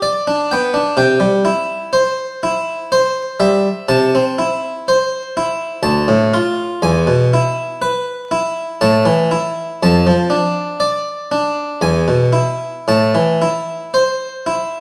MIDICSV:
0, 0, Header, 1, 2, 480
1, 0, Start_track
1, 0, Key_signature, 0, "major"
1, 0, Tempo, 974026
1, 486, Time_signature, 3, 2, 24, 8
1, 1926, Key_signature, 0, "minor"
1, 2892, Tempo, 988468
1, 5292, Tempo, 1043478
1, 7127, End_track
2, 0, Start_track
2, 0, Title_t, "Harpsichord"
2, 0, Program_c, 0, 6
2, 11, Note_on_c, 0, 74, 65
2, 135, Note_on_c, 0, 62, 54
2, 254, Note_on_c, 0, 79, 54
2, 257, Note_off_c, 0, 62, 0
2, 260, Note_on_c, 0, 59, 46
2, 261, Note_off_c, 0, 74, 0
2, 365, Note_on_c, 0, 62, 47
2, 379, Note_off_c, 0, 59, 0
2, 475, Note_off_c, 0, 79, 0
2, 478, Note_on_c, 0, 48, 69
2, 480, Note_on_c, 0, 79, 75
2, 484, Note_off_c, 0, 62, 0
2, 591, Note_on_c, 0, 55, 49
2, 597, Note_off_c, 0, 48, 0
2, 714, Note_on_c, 0, 64, 55
2, 724, Note_off_c, 0, 55, 0
2, 733, Note_off_c, 0, 79, 0
2, 951, Note_on_c, 0, 72, 62
2, 972, Note_off_c, 0, 64, 0
2, 1199, Note_on_c, 0, 64, 59
2, 1212, Note_off_c, 0, 72, 0
2, 1439, Note_on_c, 0, 72, 68
2, 1456, Note_off_c, 0, 64, 0
2, 1674, Note_on_c, 0, 55, 56
2, 1675, Note_on_c, 0, 76, 63
2, 1695, Note_off_c, 0, 72, 0
2, 1806, Note_off_c, 0, 55, 0
2, 1915, Note_on_c, 0, 48, 66
2, 1915, Note_on_c, 0, 81, 98
2, 1920, Note_off_c, 0, 76, 0
2, 2036, Note_off_c, 0, 48, 0
2, 2045, Note_on_c, 0, 60, 55
2, 2161, Note_on_c, 0, 64, 57
2, 2171, Note_off_c, 0, 60, 0
2, 2171, Note_off_c, 0, 81, 0
2, 2406, Note_on_c, 0, 72, 60
2, 2416, Note_off_c, 0, 64, 0
2, 2646, Note_on_c, 0, 64, 66
2, 2660, Note_off_c, 0, 72, 0
2, 2872, Note_on_c, 0, 38, 80
2, 2873, Note_on_c, 0, 81, 91
2, 2888, Note_off_c, 0, 64, 0
2, 2996, Note_off_c, 0, 38, 0
2, 2996, Note_on_c, 0, 45, 65
2, 3119, Note_on_c, 0, 65, 61
2, 3127, Note_off_c, 0, 45, 0
2, 3131, Note_off_c, 0, 81, 0
2, 3356, Note_on_c, 0, 40, 78
2, 3359, Note_on_c, 0, 80, 92
2, 3362, Note_off_c, 0, 65, 0
2, 3477, Note_off_c, 0, 40, 0
2, 3477, Note_on_c, 0, 47, 58
2, 3604, Note_on_c, 0, 64, 64
2, 3608, Note_off_c, 0, 47, 0
2, 3615, Note_off_c, 0, 80, 0
2, 3838, Note_on_c, 0, 71, 68
2, 3858, Note_off_c, 0, 64, 0
2, 4079, Note_on_c, 0, 64, 70
2, 4095, Note_off_c, 0, 71, 0
2, 4321, Note_on_c, 0, 81, 99
2, 4322, Note_on_c, 0, 45, 82
2, 4324, Note_off_c, 0, 64, 0
2, 4439, Note_on_c, 0, 52, 65
2, 4442, Note_off_c, 0, 45, 0
2, 4565, Note_on_c, 0, 64, 61
2, 4571, Note_off_c, 0, 52, 0
2, 4578, Note_off_c, 0, 81, 0
2, 4808, Note_off_c, 0, 64, 0
2, 4814, Note_on_c, 0, 41, 77
2, 4816, Note_on_c, 0, 81, 101
2, 4928, Note_off_c, 0, 41, 0
2, 4930, Note_on_c, 0, 53, 55
2, 5044, Note_on_c, 0, 62, 63
2, 5055, Note_off_c, 0, 53, 0
2, 5064, Note_off_c, 0, 81, 0
2, 5287, Note_on_c, 0, 74, 62
2, 5299, Note_off_c, 0, 62, 0
2, 5524, Note_on_c, 0, 62, 57
2, 5532, Note_off_c, 0, 74, 0
2, 5754, Note_on_c, 0, 40, 72
2, 5756, Note_on_c, 0, 80, 83
2, 5760, Note_off_c, 0, 62, 0
2, 5873, Note_off_c, 0, 40, 0
2, 5875, Note_on_c, 0, 47, 53
2, 5989, Note_on_c, 0, 64, 48
2, 6004, Note_off_c, 0, 47, 0
2, 6010, Note_off_c, 0, 80, 0
2, 6238, Note_off_c, 0, 64, 0
2, 6243, Note_on_c, 0, 45, 64
2, 6246, Note_on_c, 0, 81, 81
2, 6362, Note_off_c, 0, 45, 0
2, 6367, Note_on_c, 0, 52, 48
2, 6491, Note_on_c, 0, 64, 49
2, 6493, Note_off_c, 0, 52, 0
2, 6500, Note_off_c, 0, 81, 0
2, 6731, Note_on_c, 0, 72, 55
2, 6742, Note_off_c, 0, 64, 0
2, 6973, Note_on_c, 0, 64, 47
2, 6983, Note_off_c, 0, 72, 0
2, 7127, Note_off_c, 0, 64, 0
2, 7127, End_track
0, 0, End_of_file